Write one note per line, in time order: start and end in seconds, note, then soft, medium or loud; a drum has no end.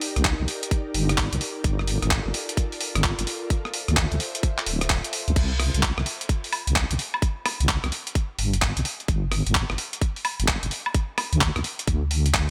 0.00 1.37 D#4 medium
0.00 1.37 G4 medium
0.00 3.46 A#4 medium
0.00 1.37 D5 medium
0.00 open hi-hat loud
0.16 0.34 C2 loud
0.16 cross-stick soft
0.16 closed hi-hat medium
0.25 kick loud
0.25 clap loud
0.40 0.46 C2 medium
0.48 open hi-hat loud
0.63 closed hi-hat medium
0.71 kick loud
0.71 closed hi-hat medium
0.94 1.28 G1 medium
0.94 open hi-hat loud
1.09 cross-stick medium
1.09 closed hi-hat medium
1.18 kick loud
1.18 clap loud
1.18 open hi-hat medium
1.33 1.39 C2 medium
1.33 closed hi-hat medium
1.41 5.32 F4 medium
1.41 5.33 A4 medium
1.41 3.48 D5 medium
1.41 open hi-hat loud
1.64 1.98 G1 loud
1.64 kick loud
1.64 closed hi-hat medium
1.79 cross-stick soft
1.88 open hi-hat loud
2.02 2.20 G1 loud
2.02 cross-stick soft
2.02 closed hi-hat medium
2.11 kick loud
2.11 clap loud
2.25 2.32 G1 medium
2.34 open hi-hat loud
2.49 closed hi-hat medium
2.57 kick loud
2.57 closed hi-hat medium
2.72 open hi-hat medium
2.81 open hi-hat loud
2.95 3.13 G1 medium
2.95 cross-stick medium
2.95 closed hi-hat medium
3.04 kick loud
3.04 clap loud
3.19 3.25 G1 medium
3.19 closed hi-hat medium
3.27 open hi-hat loud
3.50 5.34 C5 medium
3.50 5.34 E5 medium
3.50 kick loud
3.50 closed hi-hat medium
3.65 cross-stick soft
3.74 open hi-hat loud
3.88 4.06 D2 loud
3.88 cross-stick soft
3.88 closed hi-hat medium
3.97 kick loud
3.97 clap loud
4.12 4.18 D2 medium
4.12 closed hi-hat soft
4.20 open hi-hat loud
4.35 closed hi-hat medium
4.43 kick loud
4.43 closed hi-hat medium
4.58 clap medium
4.66 5.00 D1 medium
4.66 open hi-hat loud
4.81 cross-stick medium
4.81 closed hi-hat medium
4.90 kick loud
4.90 clap loud
4.90 open hi-hat medium
5.04 closed hi-hat medium
5.13 open hi-hat loud
5.28 5.35 D2 loud
5.28 closed hi-hat soft
5.36 5.70 C2 loud
5.36 kick loud
5.36 closed hi-hat medium
5.36 crash medium
5.60 cross-stick medium
5.60 open hi-hat loud
5.74 5.92 C2 loud
5.74 closed hi-hat medium
5.83 kick loud
5.83 clap loud
5.97 6.04 C2 medium
5.97 cross-stick medium
6.06 open hi-hat loud
6.21 closed hi-hat medium
6.29 kick loud
6.29 closed hi-hat medium
6.44 open hi-hat medium
6.53 open hi-hat loud
6.53 high woodblock medium
6.67 6.85 C2 medium
6.67 closed hi-hat medium
6.76 kick loud
6.76 cross-stick medium
6.76 clap loud
6.91 6.97 C2 medium
6.91 closed hi-hat medium
6.99 open hi-hat loud
7.14 high woodblock medium
7.22 kick loud
7.22 closed hi-hat medium
7.46 cross-stick medium
7.46 open hi-hat loud
7.46 high woodblock medium
7.60 7.78 C2 loud
7.60 closed hi-hat soft
7.69 kick loud
7.69 clap loud
7.84 7.90 C2 medium
7.84 cross-stick medium
7.84 closed hi-hat soft
7.92 open hi-hat loud
8.07 closed hi-hat medium
8.15 kick loud
8.15 closed hi-hat medium
8.39 8.72 G1 loud
8.39 open hi-hat loud
8.54 closed hi-hat medium
8.62 kick loud
8.62 cross-stick medium
8.62 clap loud
8.77 8.84 C2 medium
8.77 closed hi-hat medium
8.85 open hi-hat loud
9.00 closed hi-hat soft
9.08 9.42 G1 loud
9.08 kick loud
9.08 closed hi-hat medium
9.32 cross-stick medium
9.32 open hi-hat loud
9.47 9.64 G1 loud
9.47 closed hi-hat medium
9.55 kick loud
9.55 clap loud
9.70 9.77 G1 medium
9.70 cross-stick medium
9.78 open hi-hat loud
9.93 closed hi-hat medium
10.02 kick loud
10.02 closed hi-hat medium
10.16 open hi-hat medium
10.25 open hi-hat loud
10.25 high woodblock medium
10.40 10.57 G1 medium
10.40 closed hi-hat medium
10.48 kick loud
10.48 cross-stick medium
10.48 clap loud
10.63 10.70 G1 medium
10.63 closed hi-hat medium
10.71 open hi-hat loud
10.86 high woodblock medium
10.94 kick loud
10.94 closed hi-hat medium
11.18 cross-stick medium
11.18 open hi-hat loud
11.18 high woodblock medium
11.33 11.50 D2 loud
11.33 closed hi-hat medium
11.41 kick loud
11.41 clap loud
11.56 11.63 D2 medium
11.56 cross-stick soft
11.56 closed hi-hat soft
11.64 open hi-hat loud
11.79 closed hi-hat medium
11.87 12.50 D2 loud
11.87 kick loud
11.87 closed hi-hat medium
12.11 open hi-hat loud
12.26 closed hi-hat medium
12.34 kick loud
12.34 cross-stick medium
12.34 clap loud